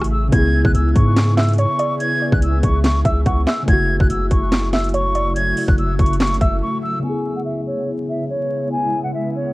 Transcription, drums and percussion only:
0.02 cross-stick loud
0.02 closed hi-hat medium
0.32 kick loud
0.32 closed hi-hat medium
0.65 kick loud
0.74 closed hi-hat medium
0.95 kick medium
0.95 closed hi-hat medium
1.16 snare loud
1.16 clap medium
1.16 closed hi-hat medium
1.37 snare loud
1.37 clap medium
1.37 closed hi-hat medium
1.43 closed hi-hat medium
1.49 closed hi-hat medium
1.53 closed hi-hat medium
1.58 closed hi-hat medium
1.79 closed hi-hat medium
2.00 closed hi-hat medium
2.32 kick loud
2.42 closed hi-hat medium
2.63 kick medium
2.63 closed hi-hat medium
2.84 snare loud
2.84 clap medium
2.84 closed hi-hat medium
3.05 kick medium
3.05 closed hi-hat medium
3.26 kick medium
3.26 closed hi-hat medium
3.47 snare loud
3.47 clap medium
3.68 kick loud
3.68 closed hi-hat medium
4.00 kick loud
4.10 closed hi-hat medium
4.31 kick medium
4.31 closed hi-hat medium
4.52 snare loud
4.52 clap medium
4.52 closed hi-hat medium
4.73 snare loud
4.73 clap medium
4.73 closed hi-hat medium
4.78 closed hi-hat medium
4.84 closed hi-hat medium
4.89 closed hi-hat medium
4.94 closed hi-hat medium
5.15 closed hi-hat medium
5.36 closed hi-hat medium
5.57 open hi-hat medium
5.68 kick loud
5.78 closed hi-hat medium
5.99 kick medium
5.99 closed hi-hat soft
6.06 closed hi-hat medium
6.13 closed hi-hat medium
6.20 snare loud
6.20 clap medium
6.20 closed hi-hat medium
6.27 closed hi-hat medium
6.34 closed hi-hat medium
6.41 kick medium
6.41 closed hi-hat medium

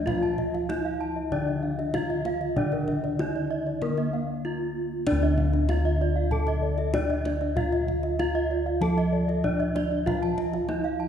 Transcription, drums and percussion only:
0.07 kendang low soft
0.23 kendang slap soft
0.38 kendang low soft
0.54 kendang slap soft
0.70 kendang high soft
1.32 kendang low soft
1.79 kendang slap soft
1.94 kendang high soft
1.94 kendang low soft
2.10 kendang slap soft
2.25 kendang high soft
2.41 kendang slap soft
2.56 kendang low soft
2.72 kendang slap soft
2.88 kendang low soft
3.04 kendang slap soft
3.19 kendang high soft
3.66 kendang slap soft
3.82 kendang high soft
3.82 kendang low soft
3.97 kendang slap soft
5.07 kendang low soft
5.22 kendang slap soft
5.38 kendang low soft
5.53 kendang slap soft
5.69 kendang high soft
6.31 kendang low soft
6.47 kendang slap soft
6.78 kendang slap soft
6.94 kendang high soft
6.94 kendang low soft
7.10 kendang slap soft
7.25 kendang high soft
7.41 kendang slap soft
7.57 kendang low soft
7.72 kendang slap soft
7.88 kendang low soft
8.03 kendang slap soft
8.19 kendang high soft
8.82 kendang high soft
8.82 kendang low soft
8.98 kendang slap soft
9.29 kendang slap soft
9.44 kendang low soft
9.60 kendang slap soft
9.76 kendang high soft
9.92 kendang slap soft
10.07 kendang low soft
10.23 kendang slap soft
10.38 kendang low soft
10.53 kendang slap soft
10.69 kendang high soft

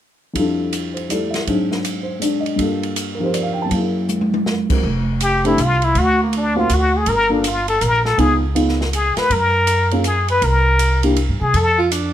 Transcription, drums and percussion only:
0.35 kick soft
0.35 ride soft
0.73 hi-hat pedal medium
0.73 ride medium
0.97 ride soft
1.10 hi-hat pedal soft
1.10 ride soft
1.34 snare soft
1.34 ride soft
1.47 kick soft
1.47 ride soft
1.72 snare soft
1.85 hi-hat pedal soft
1.85 ride medium
2.22 hi-hat pedal soft
2.22 ride soft
2.46 ride soft
2.59 kick soft
2.59 ride soft
2.83 ride soft
2.96 hi-hat pedal soft
2.96 ride medium
3.34 hi-hat pedal soft
3.34 ride medium
3.71 kick soft
3.71 ride soft
4.09 hi-hat pedal soft
4.09 high tom soft
4.21 high tom soft
4.34 high tom medium
4.46 snare soft
4.70 kick medium
4.70 crash medium
4.83 kick soft
5.21 hi-hat pedal soft
5.21 ride medium
5.45 ride soft
5.58 hi-hat pedal soft
5.58 ride medium
5.82 ride soft
5.95 kick soft
5.95 ride medium
6.33 ride soft
6.70 hi-hat pedal soft
6.70 ride medium
7.06 kick soft
7.06 ride medium
7.44 hi-hat pedal medium
7.44 ride medium
7.68 ride soft
7.81 hi-hat pedal soft
7.81 ride medium
8.05 snare soft
8.18 kick soft
8.18 ride soft
8.56 ride medium
8.69 snare soft
8.81 snare soft
8.93 hi-hat pedal soft
8.93 ride medium
9.17 snare soft
9.17 ride soft
9.30 kick soft
9.30 ride medium
9.67 hi-hat pedal medium
9.67 ride medium
9.91 ride soft
10.04 hi-hat pedal soft
10.04 ride medium
10.28 ride soft
10.42 kick soft
10.42 ride medium
10.79 hi-hat pedal medium
10.79 ride medium
11.03 ride soft
11.16 ride soft
11.54 kick soft
11.54 ride medium
11.92 hi-hat pedal medium
11.92 ride medium

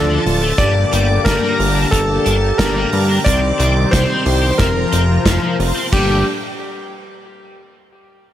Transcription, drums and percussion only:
0.26 open hi-hat medium
0.58 kick loud
0.58 closed hi-hat medium
0.93 closed hi-hat medium
1.26 kick loud
1.26 snare loud
1.26 closed hi-hat medium
1.60 open hi-hat medium
1.93 kick loud
1.93 closed hi-hat loud
2.26 closed hi-hat medium
2.59 kick loud
2.59 snare loud
2.59 closed hi-hat loud
2.92 open hi-hat medium
3.26 kick loud
3.26 closed hi-hat loud
3.60 closed hi-hat medium
3.93 kick loud
3.93 snare loud
3.93 closed hi-hat loud
4.26 open hi-hat loud
4.59 kick loud
4.59 snare medium
4.59 closed hi-hat medium
4.92 closed hi-hat medium
5.26 kick loud
5.26 snare loud
5.26 closed hi-hat loud
5.60 open hi-hat medium
5.93 kick loud
5.93 crash medium

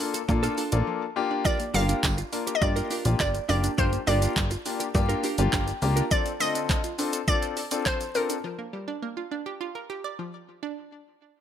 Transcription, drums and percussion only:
0.00 open hi-hat medium
0.00 shaker medium
0.14 closed hi-hat medium
0.14 shaker medium
0.29 kick loud
0.29 shaker medium
0.43 closed hi-hat medium
0.43 shaker medium
0.58 open hi-hat medium
0.58 shaker medium
0.72 closed hi-hat medium
0.72 shaker medium
1.45 kick loud
1.45 shaker medium
1.60 closed hi-hat medium
1.60 shaker soft
1.74 open hi-hat medium
1.74 shaker medium
1.89 closed hi-hat medium
1.89 shaker medium
2.03 kick loud
2.03 clap loud
2.03 tambourine loud
2.03 shaker medium
2.18 closed hi-hat medium
2.18 shaker medium
2.33 open hi-hat medium
2.33 shaker medium
2.47 closed hi-hat medium
2.47 shaker medium
2.62 kick loud
2.62 shaker medium
2.76 closed hi-hat medium
2.76 shaker medium
2.91 open hi-hat medium
2.91 shaker medium
3.05 closed hi-hat medium
3.05 shaker medium
3.20 kick loud
3.20 clap loud
3.20 tambourine medium
3.20 shaker medium
3.35 closed hi-hat medium
3.35 shaker medium
3.49 open hi-hat medium
3.49 shaker medium
3.64 closed hi-hat medium
3.64 shaker medium
3.78 kick loud
3.78 shaker medium
3.93 closed hi-hat medium
3.93 shaker medium
4.07 open hi-hat medium
4.07 shaker medium
4.22 closed hi-hat medium
4.22 shaker medium
4.36 kick loud
4.36 clap loud
4.36 shaker medium
4.51 closed hi-hat medium
4.51 shaker medium
4.66 open hi-hat medium
4.66 shaker medium
4.80 closed hi-hat medium
4.80 shaker medium
4.95 kick loud
4.95 shaker medium
5.09 closed hi-hat medium
5.09 shaker medium
5.24 open hi-hat medium
5.24 shaker medium
5.38 closed hi-hat medium
5.38 shaker medium
5.53 kick loud
5.53 clap loud
5.53 shaker medium
5.68 closed hi-hat medium
5.68 shaker medium
5.82 open hi-hat medium
5.82 shaker medium
5.97 closed hi-hat medium
5.97 shaker medium
6.11 kick loud
6.11 shaker medium
6.26 closed hi-hat medium
6.26 shaker soft
6.41 open hi-hat medium
6.41 shaker medium
6.55 closed hi-hat medium
6.55 shaker medium
6.70 kick loud
6.70 clap loud
6.70 shaker medium
6.84 closed hi-hat medium
6.84 shaker medium
6.99 open hi-hat medium
6.99 shaker medium
7.13 closed hi-hat medium
7.13 shaker medium
7.28 kick loud
7.28 shaker medium
7.43 closed hi-hat medium
7.43 shaker medium
7.57 open hi-hat medium
7.57 shaker medium
7.71 closed hi-hat medium
7.71 shaker medium
7.86 kick loud
7.86 clap loud
7.86 shaker medium
8.01 closed hi-hat medium
8.01 shaker medium
8.15 open hi-hat medium
8.15 shaker medium
8.30 closed hi-hat medium
8.30 shaker medium

